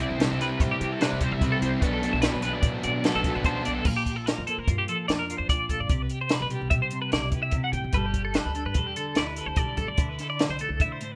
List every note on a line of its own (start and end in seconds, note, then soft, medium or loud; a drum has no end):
0.00 0.17 C3 medium
0.00 0.99 C3 medium
0.00 0.39 G3 medium
0.00 0.18 G3 medium
0.00 0.19 C4 medium
0.00 0.20 E4 medium
0.00 1.61 E4 medium
0.00 0.39 B4 medium
0.00 0.10 D5 medium
0.10 0.27 C2 medium
0.10 0.31 C5 medium
0.18 0.60 C3 medium
0.18 0.41 G3 medium
0.18 0.39 C4 medium
0.18 0.38 E4 medium
0.18 0.79 G4 medium
0.18 snare loud
0.18 closed hi-hat medium
0.30 0.47 C2 medium
0.30 0.41 A4 medium
0.39 1.82 G3 medium
0.39 1.00 G3 medium
0.39 1.01 C4 medium
0.39 1.02 E4 medium
0.39 1.00 B4 medium
0.39 0.61 B4 medium
0.39 snare soft
0.39 closed hi-hat medium
0.60 0.77 A2 loud
0.60 0.71 C5 medium
0.60 kick loud
0.60 snare soft
0.60 closed hi-hat medium
0.71 0.92 G4 medium
0.80 0.98 C3 medium
0.80 1.21 G4 medium
0.80 closed hi-hat medium
0.92 1.02 A4 medium
1.00 1.41 C3 medium
1.00 1.40 C3 medium
1.00 1.23 G3 medium
1.00 1.22 C4 medium
1.00 1.20 E4 loud
1.00 1.22 B4 medium
1.00 1.41 D5 medium
1.00 snare loud
1.00 closed hi-hat medium
1.12 1.20 C2 medium
1.21 1.42 G3 medium
1.21 1.42 C4 medium
1.21 1.43 E4 medium
1.21 1.80 G4 medium
1.21 1.32 C5 medium
1.21 kick medium
1.21 closed hi-hat medium
1.31 1.57 B1 medium
1.31 1.52 E5 medium
1.41 1.80 C3 medium
1.41 1.81 C3 medium
1.41 1.64 G3 medium
1.41 1.63 C4 medium
1.41 1.62 E4 loud
1.41 1.80 B4 medium
1.41 kick medium
1.41 closed hi-hat medium
1.52 1.62 A4 medium
1.62 1.70 C2 medium
1.62 1.82 G3 medium
1.62 1.82 C4 medium
1.62 1.80 E4 medium
1.62 1.82 E4 medium
1.62 1.82 C5 medium
1.62 closed hi-hat medium
1.82 2.08 B1 loud
1.82 3.43 B2 medium
1.82 2.22 B2 medium
1.82 2.04 F#3 medium
1.82 2.43 B3 medium
1.82 2.03 B3 medium
1.82 2.02 D4 medium
1.82 2.01 D4 medium
1.82 2.22 F#4 medium
1.82 2.44 A4 medium
1.82 1.92 B4 medium
1.82 kick medium
1.82 closed hi-hat medium
1.93 2.13 A4 medium
2.02 2.23 F#3 medium
2.02 2.24 B3 medium
2.02 2.24 D4 medium
2.02 3.64 D4 medium
2.02 snare soft
2.02 closed hi-hat medium
2.13 2.30 B1 medium
2.13 2.21 E5 medium
2.22 2.64 B2 medium
2.22 2.45 F#3 medium
2.22 2.44 B3 medium
2.22 2.42 D4 medium
2.22 2.32 E4 medium
2.22 2.41 B4 medium
2.22 snare loud
2.22 closed hi-hat medium
2.32 2.51 B1 medium
2.32 2.83 F#4 soft
2.42 3.03 F#3 medium
2.42 3.84 B3 medium
2.42 3.04 B3 medium
2.42 3.05 D4 medium
2.42 2.53 B4 medium
2.42 3.04 B4 soft
2.42 closed hi-hat medium
2.53 2.74 D5 medium
2.62 2.80 A2 medium
2.62 kick medium
2.62 closed hi-hat medium
2.74 2.83 C5 medium
2.83 3.02 B2 medium
2.83 3.23 F#4 medium
2.83 3.05 D5 medium
2.83 closed hi-hat medium
3.04 3.42 B2 medium
3.04 3.83 F#3 medium
3.04 3.26 F#3 medium
3.04 3.25 B3 medium
3.04 3.23 D4 medium
3.04 3.44 A4 medium
3.04 3.15 B4 medium
3.04 snare loud
3.04 closed hi-hat medium
3.15 3.23 B1 medium
3.15 3.35 A4 medium
3.24 3.44 F#3 medium
3.24 3.44 B3 medium
3.24 3.46 D4 medium
3.24 3.84 F#4 soft
3.24 kick medium
3.24 snare soft
3.24 closed hi-hat medium
3.35 3.44 A1 medium
3.35 3.45 B4 medium
3.44 3.63 D2 medium
3.44 3.84 B2 medium
3.44 3.83 B2 medium
3.44 3.65 F#3 medium
3.44 3.63 B3 medium
3.44 3.62 D4 medium
3.44 4.29 A4 soft
3.44 3.65 C5 medium
3.44 kick medium
3.44 closed hi-hat medium
3.64 3.85 B1 medium
3.64 3.85 F#3 medium
3.64 3.84 B3 medium
3.64 3.84 D4 medium
3.64 3.75 D5 medium
3.64 closed hi-hat medium
3.76 3.85 A4 medium
3.85 4.28 A#1 medium
3.85 5.49 A#2 medium
3.85 4.68 F4 soft
3.85 3.96 A#4 medium
3.85 kick medium
3.85 crash medium
3.96 4.16 G4 medium
4.06 kick medium
4.06 closed hi-hat medium
4.16 4.26 A4 medium
4.26 4.47 A#4 medium
4.26 5.89 C5 soft
4.26 snare medium
4.26 closed hi-hat medium
4.38 4.55 F2 medium
4.47 5.88 A#3 medium
4.47 4.59 A4 medium
4.47 closed hi-hat medium
4.58 4.66 A#2 medium
4.58 4.78 A#4 medium
4.68 4.85 G2 medium
4.68 5.29 F4 medium
4.68 kick medium
4.68 closed hi-hat medium
4.78 4.88 G4 medium
4.88 5.88 F3 medium
4.88 5.08 A4 medium
4.88 closed hi-hat medium
5.08 5.34 F2 medium
5.08 5.94 D4 medium
5.08 5.19 D5 medium
5.08 snare medium
5.08 closed hi-hat medium
5.19 5.38 A#4 medium
5.30 5.50 F4 soft
5.30 closed hi-hat medium
5.38 5.48 F2 medium
5.38 5.49 C5 medium
5.49 5.58 D2 medium
5.49 5.88 A#2 medium
5.49 5.89 F4 soft
5.49 5.70 D5 medium
5.49 kick medium
5.49 closed hi-hat medium
5.69 5.78 A#1 medium
5.69 5.80 A4 medium
5.69 kick medium
5.69 closed hi-hat medium
5.80 5.89 G2 medium
5.80 6.02 D5 medium
5.89 6.07 C2 medium
5.89 6.91 C3 medium
5.89 6.72 G4 soft
5.89 kick loud
5.89 closed hi-hat medium
6.02 6.12 B4 medium
6.09 6.21 G4 medium
6.09 closed hi-hat medium
6.21 6.42 C5 medium
6.29 7.95 B4 medium
6.29 snare loud
6.29 closed hi-hat medium
6.41 6.49 B1 medium
6.41 6.51 B4 medium
6.50 7.93 G3 medium
6.50 6.70 G4 medium
6.50 closed hi-hat soft
6.61 6.72 B1 medium
6.70 7.05 C3 medium
6.70 7.33 G4 medium
6.70 6.81 E5 medium
6.70 kick medium
6.70 closed hi-hat medium
6.82 7.01 C5 medium
6.91 7.53 C3 medium
6.91 closed hi-hat medium
7.02 7.12 B4 medium
7.12 7.30 B1 medium
7.12 8.55 E4 medium
7.12 7.33 D5 medium
7.12 snare loud
7.12 closed hi-hat medium
7.32 7.54 G4 soft
7.32 7.42 B4 medium
7.32 kick medium
7.32 closed hi-hat soft
7.43 7.63 E5 medium
7.51 7.92 C3 medium
7.51 7.93 G4 soft
7.51 kick medium
7.51 closed hi-hat medium
7.64 7.72 F#5 medium
7.72 7.82 A2 medium
7.72 7.94 G5 medium
7.72 kick medium
7.72 closed hi-hat soft
7.84 7.92 A1 medium
7.93 8.36 G1 medium
7.93 9.56 G3 medium
7.93 8.35 A4 medium
7.93 8.06 B4 medium
7.93 kick loud
7.93 closed hi-hat medium
8.06 8.24 G4 medium
8.14 kick medium
8.14 closed hi-hat medium
8.25 8.35 A4 medium
8.34 8.76 A4 medium
8.34 8.56 B4 medium
8.34 snare loud
8.34 closed hi-hat medium
8.45 8.63 D2 medium
8.55 10.02 D4 medium
8.55 8.66 A4 medium
8.55 closed hi-hat medium
8.65 8.74 G2 medium
8.65 8.87 B4 medium
8.74 8.92 E2 medium
8.74 9.38 A4 medium
8.74 kick medium
8.74 closed hi-hat medium
8.87 8.96 G4 medium
8.96 9.96 D3 medium
8.96 9.17 A4 medium
8.96 closed hi-hat medium
9.15 9.42 D2 medium
9.15 9.98 E4 medium
9.15 9.27 D5 medium
9.15 snare medium
9.15 closed hi-hat medium
9.27 9.46 B4 medium
9.36 9.57 A4 medium
9.36 closed hi-hat medium
9.46 9.55 D2 medium
9.46 9.57 C5 medium
9.56 9.66 B1 medium
9.56 9.98 G3 medium
9.56 10.39 A4 medium
9.56 9.78 D5 medium
9.56 kick loud
9.56 closed hi-hat medium
9.77 9.86 G1 medium
9.77 9.88 A4 medium
9.77 kick medium
9.77 closed hi-hat medium
9.87 9.96 D2 medium
9.87 10.09 D5 medium
9.98 10.16 D2 medium
9.98 11.16 D3 medium
9.98 10.81 E4 medium
9.98 kick loud
9.98 closed hi-hat medium
10.09 10.20 B4 medium
10.19 10.29 A4 medium
10.19 snare soft
10.19 closed hi-hat medium
10.30 10.50 D5 medium
10.39 11.16 D5 medium
10.39 snare loud
10.39 closed hi-hat medium
10.49 10.58 C2 medium
10.49 10.61 C5 medium
10.59 11.16 A3 medium
10.59 10.81 A4 medium
10.59 closed hi-hat soft
10.69 10.81 C2 medium
10.80 11.14 D3 medium
10.80 11.16 E4 medium
10.80 10.92 E5 medium
10.80 kick medium
10.80 closed hi-hat medium
10.92 11.12 C5 medium
11.01 11.16 A2 medium
11.01 closed hi-hat medium
11.12 11.16 B4 medium